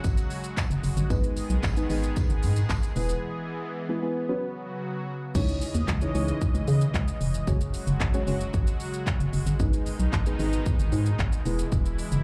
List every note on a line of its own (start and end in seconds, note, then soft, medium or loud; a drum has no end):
0.00 1.06 C#3 medium
0.00 1.08 F#3 medium
0.00 0.33 G#3 medium
0.00 4.25 G#3 medium
0.00 0.33 C#4 medium
0.00 0.33 F#4 medium
0.00 1.08 F#4 medium
0.00 0.33 G#4 medium
0.00 0.34 C#5 loud
0.04 0.23 G#1 loud
0.04 kick loud
0.04 tambourine medium
0.04 shaker medium
0.17 closed hi-hat medium
0.17 tambourine soft
0.17 shaker medium
0.30 open hi-hat medium
0.30 tambourine medium
0.30 shaker medium
0.44 closed hi-hat medium
0.44 shaker medium
0.57 kick loud
0.57 clap loud
0.57 tambourine medium
0.57 shaker medium
0.70 0.80 F#1 loud
0.70 closed hi-hat medium
0.70 shaker medium
0.84 0.93 F#1 medium
0.84 open hi-hat medium
0.84 tambourine medium
0.84 shaker medium
0.97 1.06 G1 loud
0.97 closed hi-hat medium
0.97 shaker medium
1.10 1.38 G#1 loud
1.10 2.94 D#3 medium
1.10 1.45 G#3 medium
1.10 1.45 B3 medium
1.10 2.94 B3 medium
1.10 1.45 D#4 medium
1.10 4.26 G#4 medium
1.10 1.45 G#4 medium
1.10 1.45 B4 medium
1.10 kick loud
1.10 tambourine medium
1.10 shaker medium
1.24 closed hi-hat medium
1.24 shaker medium
1.37 open hi-hat medium
1.37 tambourine medium
1.37 shaker medium
1.50 1.59 B1 medium
1.50 closed hi-hat medium
1.50 shaker medium
1.63 1.82 G#1 loud
1.63 kick loud
1.63 clap loud
1.63 tambourine medium
1.63 shaker medium
1.76 1.84 G#3 loud
1.76 1.84 B3 medium
1.76 1.84 D#4 medium
1.76 1.84 G#4 medium
1.76 1.84 B4 loud
1.76 closed hi-hat medium
1.76 shaker medium
1.90 2.08 G#1 medium
1.90 2.46 G#3 medium
1.90 2.46 B3 medium
1.90 2.46 D#4 medium
1.90 2.46 G#4 medium
1.90 2.46 B4 loud
1.90 open hi-hat medium
1.90 tambourine medium
1.90 shaker medium
2.03 closed hi-hat medium
2.03 shaker medium
2.16 kick loud
2.16 tambourine medium
2.16 shaker medium
2.30 2.45 G#1 loud
2.30 closed hi-hat medium
2.30 shaker medium
2.43 2.61 G#2 loud
2.43 open hi-hat medium
2.43 tambourine medium
2.43 shaker medium
2.56 closed hi-hat medium
2.56 tambourine soft
2.56 shaker medium
2.69 2.88 G#1 medium
2.69 kick loud
2.69 clap loud
2.69 tambourine medium
2.69 shaker medium
2.83 closed hi-hat medium
2.83 shaker medium
2.96 3.14 E1 loud
2.96 4.28 E3 medium
2.96 3.70 G#3 medium
2.96 3.70 B3 medium
2.96 5.33 B3 medium
2.96 3.70 E4 medium
2.96 3.71 G#4 medium
2.96 3.71 B4 loud
2.96 open hi-hat medium
2.96 tambourine medium
2.96 shaker medium
3.09 closed hi-hat medium
3.09 tambourine soft
3.09 shaker medium
3.89 3.96 G#3 medium
3.89 3.96 B3 medium
3.89 3.96 E4 medium
3.89 3.96 G#4 medium
3.89 3.96 B4 loud
4.02 4.29 G#3 medium
4.02 4.28 B3 medium
4.02 4.29 E4 medium
4.02 4.29 G#4 medium
4.02 4.28 B4 loud
4.29 5.34 C#3 medium
4.29 5.14 F#3 loud
4.29 5.34 F#3 medium
4.29 5.14 B3 medium
4.29 5.14 C#4 medium
4.29 5.34 F#4 medium
4.29 5.14 F#4 medium
4.29 5.14 B4 loud
5.35 5.62 C#2 loud
5.35 9.56 C#3 medium
5.35 7.45 E3 medium
5.35 7.45 G#3 medium
5.35 5.70 C#4 medium
5.35 5.70 D#4 medium
5.35 5.70 E4 medium
5.35 5.70 G#4 medium
5.35 5.70 C#5 medium
5.35 7.45 D#5 medium
5.35 kick loud
5.35 crash loud
5.35 shaker medium
5.48 closed hi-hat medium
5.48 shaker medium
5.61 open hi-hat medium
5.61 shaker medium
5.75 5.84 D#2 medium
5.75 closed hi-hat medium
5.75 shaker medium
5.88 6.06 C#2 loud
5.88 kick loud
5.88 clap loud
5.88 shaker medium
6.01 6.08 C#4 medium
6.01 6.08 D#4 medium
6.01 6.08 E4 medium
6.01 6.08 G#4 medium
6.01 6.09 C#5 loud
6.01 closed hi-hat medium
6.01 shaker medium
6.14 6.33 C#2 loud
6.14 6.70 C#4 medium
6.14 6.70 D#4 medium
6.14 6.71 E4 medium
6.14 6.71 G#4 medium
6.14 6.71 C#5 loud
6.14 open hi-hat medium
6.14 shaker medium
6.28 closed hi-hat medium
6.28 shaker medium
6.41 kick loud
6.41 shaker medium
6.55 6.64 C#2 loud
6.55 closed hi-hat medium
6.55 shaker medium
6.68 6.86 C#3 loud
6.68 open hi-hat medium
6.68 shaker medium
6.81 closed hi-hat medium
6.81 shaker medium
6.94 7.13 C#2 loud
6.94 kick loud
6.94 clap loud
6.94 shaker medium
7.08 closed hi-hat medium
7.08 shaker medium
7.21 7.39 F1 loud
7.21 open hi-hat medium
7.21 shaker medium
7.34 closed hi-hat medium
7.34 shaker medium
7.47 7.75 F#1 loud
7.47 9.58 F#3 medium
7.47 7.82 G#3 medium
7.47 12.24 G#3 medium
7.47 7.82 C#4 medium
7.47 9.58 F#4 medium
7.47 7.82 F#4 medium
7.47 7.82 G#4 medium
7.47 7.82 C#5 loud
7.47 kick loud
7.47 shaker medium
7.61 closed hi-hat medium
7.61 shaker medium
7.74 open hi-hat medium
7.74 shaker medium
7.87 7.96 F#1 medium
7.87 closed hi-hat medium
7.87 shaker medium
8.01 8.19 G#1 loud
8.01 kick loud
8.01 clap loud
8.01 shaker medium
8.14 8.21 G#3 medium
8.14 8.21 C#4 medium
8.14 8.21 F#4 medium
8.14 8.21 G#4 medium
8.14 8.21 C#5 loud
8.14 closed hi-hat medium
8.14 shaker medium
8.27 8.45 F#1 loud
8.27 8.83 G#3 medium
8.27 8.83 C#4 medium
8.27 8.83 F#4 medium
8.27 8.83 G#4 medium
8.27 8.83 C#5 loud
8.27 open hi-hat medium
8.27 shaker medium
8.41 closed hi-hat medium
8.41 shaker medium
8.54 8.72 G#1 loud
8.54 kick loud
8.54 shaker medium
8.67 closed hi-hat medium
8.67 shaker medium
8.80 open hi-hat medium
8.80 shaker medium
8.94 closed hi-hat medium
8.94 shaker medium
9.07 kick loud
9.07 clap loud
9.07 shaker medium
9.20 9.29 F#1 medium
9.20 closed hi-hat medium
9.20 shaker medium
9.33 9.42 F#1 medium
9.33 open hi-hat medium
9.33 shaker medium
9.47 9.56 G1 loud
9.47 closed hi-hat medium
9.47 shaker medium
9.60 9.87 G#1 loud
9.60 12.24 B2 medium
9.60 11.44 D#3 medium
9.60 9.95 G#3 medium
9.60 9.95 B3 medium
9.60 9.95 D#4 medium
9.60 11.44 D#4 medium
9.60 9.95 G#4 medium
9.60 9.95 B4 medium
9.60 kick loud
9.60 shaker medium
9.73 closed hi-hat medium
9.73 shaker medium
9.86 open hi-hat medium
9.86 shaker medium
10.00 10.09 B1 medium
10.00 closed hi-hat medium
10.00 shaker medium
10.13 10.31 G#1 loud
10.13 kick loud
10.13 clap loud
10.13 shaker medium
10.26 10.33 G#3 medium
10.26 10.33 B3 medium
10.26 10.33 D#4 medium
10.26 10.33 G#4 medium
10.26 10.33 B4 loud
10.26 closed hi-hat medium
10.26 shaker medium
10.39 10.58 G#1 loud
10.39 10.95 G#3 medium
10.39 10.95 B3 medium
10.39 10.95 D#4 medium
10.39 10.95 G#4 medium
10.39 10.95 B4 loud
10.39 open hi-hat medium
10.39 shaker medium
10.53 closed hi-hat medium
10.53 shaker medium
10.66 kick loud
10.66 shaker medium
10.79 10.88 G#1 loud
10.79 closed hi-hat medium
10.79 shaker medium
10.92 11.11 G#2 loud
10.92 open hi-hat medium
10.92 shaker medium
11.06 closed hi-hat medium
11.06 shaker medium
11.19 11.37 G#1 loud
11.19 kick loud
11.19 clap loud
11.19 shaker medium
11.33 closed hi-hat medium
11.33 shaker medium
11.45 11.64 E1 loud
11.45 12.24 E3 medium
11.45 12.20 G#3 medium
11.45 12.20 B3 medium
11.45 12.20 E4 medium
11.45 12.24 E4 medium
11.45 12.20 G#4 medium
11.45 12.20 B4 loud
11.45 open hi-hat medium
11.45 shaker medium
11.59 closed hi-hat medium
11.59 shaker medium
11.72 12.00 E1 loud
11.72 kick loud
11.72 shaker medium
11.86 closed hi-hat medium
11.86 shaker medium
11.99 open hi-hat medium
11.99 shaker medium
12.12 12.21 F#1 medium
12.12 closed hi-hat medium
12.12 shaker medium